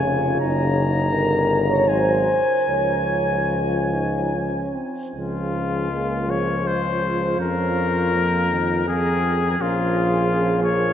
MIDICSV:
0, 0, Header, 1, 6, 480
1, 0, Start_track
1, 0, Key_signature, -5, "major"
1, 0, Tempo, 713436
1, 266, Time_signature, 3, 2, 24, 8
1, 746, Tempo, 756620
1, 1226, Tempo, 823045
1, 3146, Tempo, 765306
1, 3626, Tempo, 736196
1, 6026, Tempo, 679502
1, 6963, End_track
2, 0, Start_track
2, 0, Title_t, "Cornet"
2, 0, Program_c, 0, 56
2, 0, Note_on_c, 0, 80, 59
2, 241, Note_off_c, 0, 80, 0
2, 269, Note_on_c, 0, 82, 60
2, 1234, Note_on_c, 0, 80, 56
2, 1243, Note_off_c, 0, 82, 0
2, 2951, Note_off_c, 0, 80, 0
2, 3155, Note_on_c, 0, 65, 61
2, 3873, Note_on_c, 0, 73, 54
2, 3883, Note_off_c, 0, 65, 0
2, 4111, Note_on_c, 0, 72, 60
2, 4121, Note_off_c, 0, 73, 0
2, 4584, Note_off_c, 0, 72, 0
2, 4592, Note_on_c, 0, 70, 65
2, 5537, Note_off_c, 0, 70, 0
2, 5552, Note_on_c, 0, 68, 66
2, 6034, Note_on_c, 0, 65, 68
2, 6044, Note_off_c, 0, 68, 0
2, 6747, Note_off_c, 0, 65, 0
2, 6752, Note_on_c, 0, 73, 68
2, 6963, Note_off_c, 0, 73, 0
2, 6963, End_track
3, 0, Start_track
3, 0, Title_t, "French horn section"
3, 0, Program_c, 1, 60
3, 0, Note_on_c, 1, 73, 92
3, 267, Note_off_c, 1, 73, 0
3, 755, Note_on_c, 1, 70, 78
3, 1082, Note_off_c, 1, 70, 0
3, 1111, Note_on_c, 1, 73, 77
3, 1227, Note_on_c, 1, 72, 76
3, 1230, Note_off_c, 1, 73, 0
3, 1704, Note_off_c, 1, 72, 0
3, 1704, Note_on_c, 1, 73, 70
3, 2654, Note_off_c, 1, 73, 0
3, 3142, Note_on_c, 1, 68, 41
3, 4076, Note_off_c, 1, 68, 0
3, 4105, Note_on_c, 1, 65, 42
3, 4577, Note_off_c, 1, 65, 0
3, 4585, Note_on_c, 1, 65, 46
3, 5533, Note_off_c, 1, 65, 0
3, 5547, Note_on_c, 1, 68, 52
3, 5779, Note_off_c, 1, 68, 0
3, 5787, Note_on_c, 1, 68, 46
3, 6017, Note_on_c, 1, 70, 45
3, 6021, Note_off_c, 1, 68, 0
3, 6269, Note_off_c, 1, 70, 0
3, 6275, Note_on_c, 1, 68, 54
3, 6963, Note_off_c, 1, 68, 0
3, 6963, End_track
4, 0, Start_track
4, 0, Title_t, "Euphonium"
4, 0, Program_c, 2, 58
4, 0, Note_on_c, 2, 65, 63
4, 271, Note_on_c, 2, 63, 64
4, 281, Note_off_c, 2, 65, 0
4, 1523, Note_off_c, 2, 63, 0
4, 1702, Note_on_c, 2, 61, 47
4, 2124, Note_off_c, 2, 61, 0
4, 2198, Note_on_c, 2, 65, 57
4, 2438, Note_on_c, 2, 63, 53
4, 2447, Note_off_c, 2, 65, 0
4, 2673, Note_on_c, 2, 61, 55
4, 2681, Note_off_c, 2, 63, 0
4, 2907, Note_on_c, 2, 60, 44
4, 2916, Note_off_c, 2, 61, 0
4, 3141, Note_off_c, 2, 60, 0
4, 3145, Note_on_c, 2, 61, 42
4, 3601, Note_off_c, 2, 61, 0
4, 3624, Note_on_c, 2, 58, 43
4, 4105, Note_on_c, 2, 56, 49
4, 4115, Note_off_c, 2, 58, 0
4, 4575, Note_on_c, 2, 61, 47
4, 4585, Note_off_c, 2, 56, 0
4, 5066, Note_on_c, 2, 58, 44
4, 5076, Note_off_c, 2, 61, 0
4, 5548, Note_on_c, 2, 60, 50
4, 5558, Note_off_c, 2, 58, 0
4, 6021, Note_off_c, 2, 60, 0
4, 6025, Note_on_c, 2, 61, 52
4, 6503, Note_off_c, 2, 61, 0
4, 6512, Note_on_c, 2, 61, 53
4, 6744, Note_on_c, 2, 58, 52
4, 6754, Note_off_c, 2, 61, 0
4, 6963, Note_off_c, 2, 58, 0
4, 6963, End_track
5, 0, Start_track
5, 0, Title_t, "Trombone"
5, 0, Program_c, 3, 57
5, 0, Note_on_c, 3, 49, 58
5, 1229, Note_on_c, 3, 54, 51
5, 1238, Note_off_c, 3, 49, 0
5, 1534, Note_off_c, 3, 54, 0
5, 1710, Note_on_c, 3, 53, 43
5, 2928, Note_off_c, 3, 53, 0
5, 3144, Note_on_c, 3, 53, 41
5, 3601, Note_off_c, 3, 53, 0
5, 3619, Note_on_c, 3, 56, 45
5, 3859, Note_on_c, 3, 53, 44
5, 3869, Note_off_c, 3, 56, 0
5, 5066, Note_off_c, 3, 53, 0
5, 5068, Note_on_c, 3, 53, 45
5, 5305, Note_off_c, 3, 53, 0
5, 5314, Note_on_c, 3, 51, 51
5, 5551, Note_on_c, 3, 53, 45
5, 5560, Note_off_c, 3, 51, 0
5, 6026, Note_off_c, 3, 53, 0
5, 6030, Note_on_c, 3, 53, 50
5, 6963, Note_off_c, 3, 53, 0
5, 6963, End_track
6, 0, Start_track
6, 0, Title_t, "Tuba"
6, 0, Program_c, 4, 58
6, 0, Note_on_c, 4, 29, 59
6, 241, Note_off_c, 4, 29, 0
6, 274, Note_on_c, 4, 30, 60
6, 753, Note_on_c, 4, 31, 62
6, 763, Note_off_c, 4, 30, 0
6, 1230, Note_on_c, 4, 32, 64
6, 1239, Note_off_c, 4, 31, 0
6, 1534, Note_off_c, 4, 32, 0
6, 1704, Note_on_c, 4, 37, 48
6, 2925, Note_off_c, 4, 37, 0
6, 3144, Note_on_c, 4, 37, 46
6, 4554, Note_off_c, 4, 37, 0
6, 4581, Note_on_c, 4, 41, 47
6, 6002, Note_off_c, 4, 41, 0
6, 6026, Note_on_c, 4, 34, 48
6, 6963, Note_off_c, 4, 34, 0
6, 6963, End_track
0, 0, End_of_file